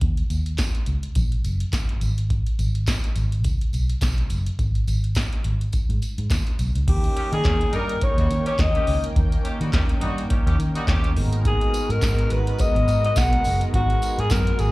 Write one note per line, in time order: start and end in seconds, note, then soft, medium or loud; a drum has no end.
0.01 0.21 D#2 loud
0.01 kick loud
0.01 closed hi-hat medium
0.17 closed hi-hat soft
0.30 0.61 D#2 medium
0.30 closed hi-hat medium
0.30 tambourine medium
0.46 closed hi-hat soft
0.58 kick loud
0.58 snare loud
0.58 clap medium
0.58 closed hi-hat medium
0.58 tambourine medium
0.75 closed hi-hat medium
0.86 1.07 C#2 medium
0.86 closed hi-hat medium
1.03 closed hi-hat medium
1.15 1.35 A#1 medium
1.15 kick loud
1.15 closed hi-hat medium
1.15 tambourine soft
1.32 closed hi-hat medium
1.44 1.64 F#1 medium
1.44 closed hi-hat medium
1.44 tambourine soft
1.60 closed hi-hat soft
1.73 1.92 G1 medium
1.73 kick loud
1.73 snare medium
1.73 clap medium
1.73 closed hi-hat medium
1.73 tambourine loud
1.89 closed hi-hat soft
2.01 2.41 G#1 loud
2.01 closed hi-hat medium
2.01 tambourine soft
2.18 closed hi-hat medium
2.30 kick loud
2.30 closed hi-hat medium
2.47 closed hi-hat soft
2.59 2.89 G#1 loud
2.59 closed hi-hat medium
2.59 tambourine medium
2.75 closed hi-hat soft
2.87 kick loud
2.87 snare loud
2.87 clap medium
2.87 closed hi-hat medium
2.87 tambourine medium
3.04 closed hi-hat medium
3.16 3.45 G#1 medium
3.16 closed hi-hat medium
3.16 tambourine soft
3.32 closed hi-hat medium
3.44 3.64 C#2 medium
3.44 kick loud
3.44 closed hi-hat medium
3.44 tambourine medium
3.61 closed hi-hat soft
3.73 3.93 B1 medium
3.73 closed hi-hat medium
3.73 tambourine soft
3.90 closed hi-hat soft
4.01 4.21 B1 medium
4.01 kick loud
4.01 snare loud
4.01 clap medium
4.01 closed hi-hat medium
4.01 tambourine loud
4.18 closed hi-hat soft
4.30 4.50 F#1 medium
4.30 closed hi-hat medium
4.30 tambourine medium
4.46 closed hi-hat medium
4.59 4.78 G#1 loud
4.59 kick loud
4.59 closed hi-hat medium
4.59 tambourine soft
4.75 closed hi-hat soft
4.88 5.18 G#1 medium
4.88 closed hi-hat medium
4.88 tambourine medium
5.04 closed hi-hat soft
5.15 kick loud
5.15 snare loud
5.15 clap medium
5.15 closed hi-hat medium
5.15 tambourine medium
5.33 closed hi-hat medium
5.44 5.64 G#1 medium
5.44 closed hi-hat medium
5.61 closed hi-hat soft
5.72 kick medium
5.72 closed hi-hat medium
5.72 tambourine medium
5.89 5.98 G#2 medium
5.89 closed hi-hat medium
6.02 closed hi-hat medium
6.02 tambourine soft
6.18 6.27 G#2 medium
6.18 closed hi-hat soft
6.30 6.41 D#2 medium
6.30 kick loud
6.30 snare loud
6.30 clap medium
6.30 closed hi-hat medium
6.30 tambourine loud
6.47 closed hi-hat soft
6.59 6.70 B1 medium
6.59 closed hi-hat medium
6.59 tambourine soft
6.75 6.84 C#2 medium
6.75 closed hi-hat medium
6.87 7.07 D#2 loud
6.87 11.12 D#3 medium
6.87 11.12 A#3 medium
6.87 11.12 C#4 medium
6.87 11.12 D#4 medium
6.87 7.30 G4 medium
6.87 11.13 A#4 medium
6.87 11.12 G5 medium
6.87 kick loud
6.87 closed hi-hat medium
6.87 crash medium
7.04 closed hi-hat medium
7.16 7.29 D#3 medium
7.16 7.29 C#4 medium
7.16 7.29 G4 loud
7.16 closed hi-hat medium
7.32 7.41 D#3 loud
7.32 7.42 G3 medium
7.32 7.42 D#4 medium
7.32 7.77 G#4 loud
7.32 7.42 A#4 medium
7.32 closed hi-hat soft
7.44 7.64 D#2 loud
7.44 7.57 D#3 medium
7.44 7.57 C#4 medium
7.44 7.58 G4 medium
7.44 kick loud
7.44 snare loud
7.44 clap loud
7.44 closed hi-hat medium
7.61 closed hi-hat medium
7.73 7.93 G2 loud
7.73 7.96 G3 loud
7.73 7.96 D#4 loud
7.73 7.96 A#4 loud
7.73 8.05 A#4 medium
7.73 closed hi-hat medium
7.89 closed hi-hat medium
8.01 8.14 G3 medium
8.01 8.14 D#4 medium
8.01 8.14 A#4 medium
8.01 8.47 C#5 loud
8.01 kick loud
8.01 closed hi-hat medium
8.18 8.26 D#2 loud
8.18 8.28 G3 medium
8.18 8.28 D#4 medium
8.18 8.28 F#4 medium
8.18 closed hi-hat medium
8.30 8.50 D#3 loud
8.30 closed hi-hat medium
8.46 8.56 D#3 medium
8.46 8.56 C#4 medium
8.46 8.56 G4 loud
8.46 8.62 C#5 loud
8.46 closed hi-hat medium
8.59 8.78 D#2 loud
8.59 9.04 D#5 loud
8.59 kick loud
8.59 snare loud
8.59 clap medium
8.59 closed hi-hat medium
8.75 8.98 D#3 medium
8.75 8.98 C#4 loud
8.75 8.98 G4 loud
8.75 closed hi-hat medium
8.87 9.07 C#2 medium
8.87 open hi-hat medium
9.04 closed hi-hat medium
9.16 9.36 D#2 loud
9.16 kick loud
9.16 closed hi-hat medium
9.32 closed hi-hat medium
9.44 9.57 D#3 medium
9.44 9.57 C#4 medium
9.44 9.57 G4 medium
9.44 closed hi-hat medium
9.61 9.69 D#3 loud
9.61 9.71 G3 medium
9.61 9.71 D#4 medium
9.61 9.71 F#4 medium
9.61 closed hi-hat soft
9.73 9.93 D#2 loud
9.73 9.86 D#3 medium
9.73 9.86 C#4 medium
9.73 9.86 G4 loud
9.73 kick loud
9.73 snare loud
9.73 clap loud
9.73 closed hi-hat medium
9.89 closed hi-hat medium
10.01 10.21 G2 loud
10.01 10.24 G3 loud
10.01 10.24 D#4 loud
10.01 10.24 F#4 loud
10.01 closed hi-hat medium
10.18 closed hi-hat medium
10.30 10.43 D#3 medium
10.30 10.43 C#4 medium
10.30 10.43 G4 loud
10.30 kick loud
10.30 closed hi-hat loud
10.46 10.55 D#2 medium
10.46 10.56 D#3 loud
10.46 10.56 C#4 loud
10.46 10.56 G4 loud
10.46 closed hi-hat medium
10.59 10.78 D#3 loud
10.59 closed hi-hat medium
10.75 10.85 G3 loud
10.75 10.85 D#4 loud
10.75 10.85 F#4 loud
10.75 closed hi-hat medium
10.87 11.17 D#2 loud
10.87 11.10 D#3 medium
10.87 11.10 C#4 loud
10.87 11.10 G4 loud
10.87 kick loud
10.87 snare loud
10.87 clap medium
10.87 closed hi-hat medium
11.04 closed hi-hat medium
11.15 11.55 G#1 loud
11.15 14.72 G#3 medium
11.15 14.72 B3 medium
11.15 14.72 D#4 medium
11.15 14.72 F#4 medium
11.15 14.72 A#4 medium
11.15 open hi-hat medium
11.33 closed hi-hat medium
11.45 11.93 G#4 loud
11.45 kick loud
11.45 closed hi-hat medium
11.61 closed hi-hat medium
11.74 closed hi-hat medium
11.74 tambourine medium
11.89 11.98 G#2 medium
11.89 12.33 A#4 loud
11.89 closed hi-hat soft
12.02 12.22 G#2 loud
12.02 kick loud
12.02 snare loud
12.02 clap loud
12.02 closed hi-hat medium
12.02 tambourine medium
12.18 closed hi-hat medium
12.30 12.50 G#1 medium
12.30 12.62 B4 medium
12.30 closed hi-hat medium
12.47 closed hi-hat medium
12.58 13.04 D#5 loud
12.58 kick loud
12.58 closed hi-hat loud
12.58 tambourine medium
12.75 12.84 G#1 loud
12.75 closed hi-hat medium
12.88 13.07 G#2 loud
12.88 closed hi-hat medium
12.88 tambourine medium
13.04 13.19 D#5 loud
13.04 closed hi-hat medium
13.16 13.36 B1 loud
13.16 13.61 F#5 loud
13.16 kick loud
13.16 snare loud
13.16 clap medium
13.16 closed hi-hat medium
13.16 tambourine loud
13.33 closed hi-hat medium
13.44 13.65 F#1 loud
13.44 open hi-hat medium
13.44 tambourine medium
13.61 closed hi-hat medium
13.74 13.93 G#1 loud
13.74 14.21 F#4 loud
13.74 kick loud
13.74 closed hi-hat loud
13.90 closed hi-hat medium
14.02 closed hi-hat medium
14.02 tambourine medium
14.18 14.27 G#2 loud
14.18 14.32 G#4 loud
14.18 closed hi-hat soft
14.30 14.50 F#2 loud
14.30 14.61 A#4 medium
14.30 kick loud
14.30 snare loud
14.30 clap loud
14.30 closed hi-hat loud
14.30 tambourine loud
14.47 closed hi-hat medium
14.59 14.72 G#1 medium
14.59 14.72 G#4 medium
14.59 closed hi-hat medium
14.59 tambourine soft